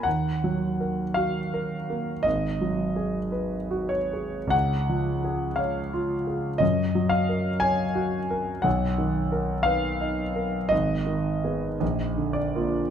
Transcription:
\new Staff \with { instrumentName = "Grand piano" } { \time 4/4 \key ees \minor \tempo 4 = 56 << { ges''4 f''4 ees''4. des''8 | ges''4 f''4 ees''8 f''8 aes''4 | fis''4 f''4 ees''4. d''8 | } \\ { \tuplet 3/2 { ees,8 ges8 bes'8 ges'8 bes'8 bes8 aes,,8 ges8 aes'8 ces''8 ges'8 aes'8 } | \tuplet 3/2 { des,8 f8 aes'8 des''8 f'8 aes'8 ges,8 ges8 bes'8 des''8 ges'8 bes'8 } | \tuplet 3/2 { b,,8 dis8 ais'8 b'8 dis'8 ais'8 aes,,8 ees8 <ces' aes'>8 bes,,8 d8 <bes f'>8 } | } >> }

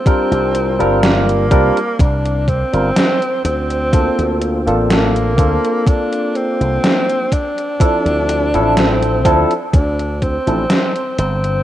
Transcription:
<<
  \new Staff \with { instrumentName = "Tine electric piano" } { \time 4/4 \key d \minor \tempo 4 = 62 <g c' d' f' bes'>8. <g c' d' f' bes'>8. <g c' d' f' bes'>16 r4 <g c' d' f' bes'>16 r4 | <bes c' d' f' a'>8. <bes c' d' f' a'>8. <bes c' d' f' a'>2 r8 | <f c' d' e' a'>8. <f c' d' e' a'>8. <f c' d' e' a'>16 r4 <f c' d' e' a'>16 r4 | }
  \new Staff \with { instrumentName = "Tenor saxophone" } { \time 4/4 \key d \minor c'4 bes4 d'8 c'4 c'8~ | c'8 r8 bes4 d'8 c'4 d'8~ | d'4 c'8 r8 d'8 c'4 c'8 | }
  \new Staff \with { instrumentName = "Slap bass" } { \clef bass \time 4/4 \key d \minor r16 c,8 g,,8. c,16 r16 c,8. g,,16 r8 d,8~ | d,16 d,8 a,,8. d,16 r4 c,16 r4 | r16 d,8 a,,8. d,16 r16 d,8. a,,16 r8 g,,8 | }
  \new DrumStaff \with { instrumentName = "Drums" } \drummode { \time 4/4 <hh bd>16 hh16 hh16 hh16 <hh sn>16 hh16 <hh bd>16 hh16 <hh bd>16 hh16 <hh bd>16 hh16 <hh sn>16 hh16 hh16 hh16 | <hh bd>16 hh16 hh16 hh16 <hh sn>16 hh16 <hh bd>16 hh16 <hh bd>16 hh16 hh16 hh16 <hh sn>16 hh16 <hh bd>16 hh16 | <hh bd>16 hh16 hh16 hh16 <hh sn>16 hh16 <hh bd>16 hh16 <hh bd>16 hh16 <hh bd>16 hh16 <hh sn>16 hh16 hh16 hh16 | }
>>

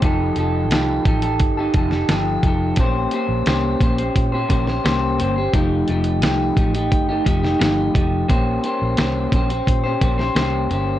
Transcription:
<<
  \new Staff \with { instrumentName = "Clean electric guitar" } { \time 4/4 \key bes \dorian \tempo 4 = 87 <f ees' g' a'>8 <f ees' g' a'>8 <f ees' g' a'>8 <f ees' g' a'>16 <ees' g' a'>8 <ees' g' a'>16 <f ees' g' a'>16 <ees' g' a'>16 <f ees' g' a'>8 <f ees' g' a'>8 | <bes des' g' c''>8 <bes des' g' c''>8 <bes des' g' c''>8 <bes des' g' c''>16 <des' g' c''>8 <des' g' c''>16 <bes des' g' c''>16 <des' g' c''>16 <bes des' g' c''>8 <bes des' g' c''>16 <des' g' c''>16 | <f a ees' g'>8 <f a ees' g'>8 <f a ees' g'>8 <f a ees' g'>16 <a ees' g'>8 <a ees' g'>16 <f a ees' g'>16 <a ees' g'>16 <f a ees' g'>8 <f a ees' g'>8 | <bes des' g' c''>8 <bes des' g' c''>8 <bes des' g' c''>8 <bes des' g' c''>16 <des' g' c''>8 <des' g' c''>16 <bes des' g' c''>16 <des' g' c''>16 <bes des' g' c''>8 <bes des' g' c''>8 | }
  \new Staff \with { instrumentName = "Fingered electric bass" } { \clef bass \time 4/4 \key bes \dorian f,,8 f,,8 c,8 a,,8 g,,8 f,,8 g,,8 f,,8 | bes,,8 r16 bes,,16 c,8 bes,,8 bes,8 bes,,8 c,8 g,,8 | f,,8 f,,8 c,8 a,,8 g,,8 f,,8 g,,8 f,,8 | bes,,8 r16 bes,,16 c,8 bes,,8 bes,8 bes,,8 c,8 g,,8 | }
  \new DrumStaff \with { instrumentName = "Drums" } \drummode { \time 4/4 <hh bd>8 hh8 <hh sn>8 <hh bd>16 hh16 <hh bd>8 <hh bd>16 sn16 <hh sn>8 <hh bd>8 | <hh bd>8 hh8 <hh sn>8 <hh bd>16 hh16 <hh bd>8 <hh bd>16 sn16 <hh sn>8 hh8 | <hh bd>8 hh16 hh16 <hh sn>8 <hh bd>16 hh16 <hh bd>8 <hh bd>16 sn16 <hh sn>8 <hh bd>8 | <hh bd>8 hh8 <hh sn>8 <hh bd>16 hh16 <hh bd>8 <hh bd>16 sn16 <hh sn>8 hh8 | }
>>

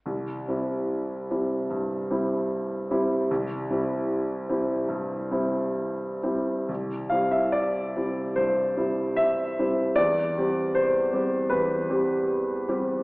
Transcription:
\new Staff \with { instrumentName = "Grand piano" } { \time 4/4 \key c \major \tempo 4 = 75 << { r1 | r1 | r8 f''16 e''16 d''4 c''4 e''4 | d''4 c''4 b'4. r8 | } \\ { c,8 <g c' e'>4 <g c' e'>8 g,8 <g c' e'>4 <g c' e'>8 | c,8 <g c' e'>4 <g c' e'>8 g,8 <g c' e'>4 <g c' e'>8 | c,8 <g c' e'>4 <g c' e'>8 g,8 <g c' e'>4 <g c' e'>8 | e,8 <g c' g'>4 <g c' g'>8 e,8 <g c' g'>4 <g c' g'>8 | } >> }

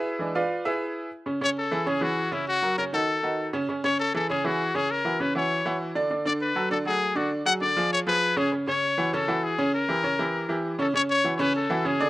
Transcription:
<<
  \new Staff \with { instrumentName = "Trumpet" } { \time 4/4 \key a \major \tempo 4 = 198 r1 | r8 cis''8 a'4 gis'8 fis'4 e'8 | fis'4 ais'8 a'2 r8 | r8 cis''8 a'8 a'8 gis'8 fis'4 gis'8 |
ais'4 b'8 cis''4. r4 | r8 d''8 b'4 a'8 gis'4 fis'8 | r8 fis''8 d''4 cis''8 b'4 gis'8 | r8 cis''4. a'4 gis'4 |
ais'2. r8 a'8 | cis''8 cis''8.~ cis''32 cis''32 b'8 a'4 gis'4 | }
  \new Staff \with { instrumentName = "Upright piano" } { \time 4/4 \key a \major <e' gis' b' e''>4 <f' b' d'' f''>4 <e' gis' b' e''>4. r8 | <cis cis' cis''>8 <cis cis' cis''>4 <e e' gis'>8 <cis cis' cis''>8 <e e' gis'>4 <cis cis' cis''>8~ | <cis cis' cis''>8 <fis fis' ais'>8 <cis cis' cis''>8 <dis dis' fis'>4 <dis dis' fis'>4 <cis cis' cis''>8 | <cis cis' cis''>8 <cis cis' cis''>4 <e e' gis'>8 <cis cis' cis''>8 <e e' gis'>4 <cis cis' cis''>8~ |
<cis cis' cis''>8 <e e' fis'>8 <cis cis' cis''>8 <e e' fis'>4 <e e' fis'>4 <d d' d''>8 | <d d' d''>8 <d d' d''>4 <fis fis' a'>8 <d d' d''>8 <fis a fis'>4 <d d' d''>8~ | <d d' d''>8 <fis fis' aes'>8 <d d' d''>8 <f f' aes'>4 <eis eis' gis'>4 <cis cis' cis''>8 | <cis cis' cis''>8 <cis cis' cis''>4 <e e' fis'>8 <cis cis' cis''>8 <e e' fis'>4 <cis cis' cis''>8~ |
<cis cis' cis''>8 <e e' g'>8 <cis cis' cis''>8 <e e' g'>4 <e e' g'>4 <cis cis' cis''>8 | <cis cis' cis''>4 <e e' fis'>8 <cis cis' cis''>4 <e e' fis'>8 <cis cis' cis''>8 <d d' d''>8 | }
  \new Staff \with { instrumentName = "Upright piano" } { \clef bass \time 4/4 \key a \major r8 <e gis d'>8 r2. | r1 | r1 | r1 |
r1 | r1 | r1 | r1 |
r1 | r1 | }
>>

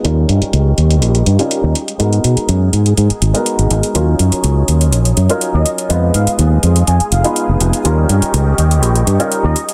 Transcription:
<<
  \new Staff \with { instrumentName = "Analog polysynth" } { \time 4/4 \key aes \dorian \tempo 4 = 123 r1 | r1 | r2. r16 ees''16 r8 | r8 f''16 r4 r16 aes''16 r16 f''8. r8. |
r2. r16 ees''16 r8 | }
  \new Staff \with { instrumentName = "String machine" } { \time 4/4 \key aes \dorian <g' ees'' des'''>2.~ <g' ees'' des'''>8 aes'8~ | aes'1 | <des'' ees'''>1 | <aes' f'' ees'''>1 |
<g' ees'' des'''>2.~ <g' ees'' des'''>8 <aes' ges''>8 | }
  \new Staff \with { instrumentName = "Grand piano" } { \time 4/4 \key aes \dorian <g des' ees' f' bes'>2~ <g des' ees' f' bes'>8. <g des' ees' f' bes'>8. r8 | <aes ces' ees' ges' bes'>2~ <aes ces' ees' ges' bes'>8. <aes ces' ees' ges' bes'>4~ <aes ces' ees' ges' bes'>16 | <ges des' ees' f' bes'>2~ <ges des' ees' f' bes'>8. <ges des' ees' f' bes'>4~ <ges des' ees' f' bes'>16 | <aes ces' ees' f' ces''>2~ <aes ces' ees' f' ces''>8. <aes ces' ees' f' ces''>4~ <aes ces' ees' f' ces''>16 |
<g des' ees' f' bes'>2~ <g des' ees' f' bes'>8. <g des' ees' f' bes'>8. r8 | }
  \new Staff \with { instrumentName = "Fingered electric bass" } { \clef bass \time 4/4 \key aes \dorian ees,8 g,16 r16 des,8 ees,8 bes,,8 g,16 r8 ees,16 r8 | aes,8 ces16 r16 ges,8 aes,8 aes,16 r16 aes,,16 r8 aes,,16 aes,,16 r16 | ees,8 ges,16 r16 des,8 ees,8 bes,,8 ges,16 r8 ees,16 r8 | f,8 aes,16 r16 ees,8 f,8 f,16 r16 f,,16 r8 f,,16 f,,16 r16 |
ees,8 g,16 r16 des,8 ees,8 bes,,8 g,16 r8 ees,16 r8 | }
  \new DrumStaff \with { instrumentName = "Drums" } \drummode { \time 4/4 hh8 hh16 hh16 hh8 hh16 hh16 hh16 hh16 hh16 hh16 hh8 hh16 hh16 | hh16 hh16 hh16 hh16 hh8 hh16 hh16 hh16 hh16 hh16 hh16 hh16 hh16 hh16 hh16 | hh8 hh16 hh16 hh8 hh16 hh16 hh16 hh16 hh16 hh16 hh8 hh16 hh16 | hh8 hh16 hh16 hh8 hh16 hh16 hh16 hh16 hh16 hh16 hh8 hh16 hh16 |
hh8 hh16 hh16 hh8 hh16 hh16 hh16 hh16 hh16 hh16 hh8 hh16 hh16 | }
>>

